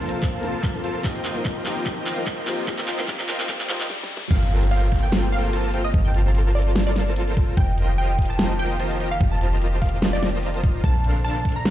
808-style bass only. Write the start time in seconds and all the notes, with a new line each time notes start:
Already playing: G1
1.04 F1
4.31 G1
5.94 G1
7.57 F1
9.21 F1
10.84 A#1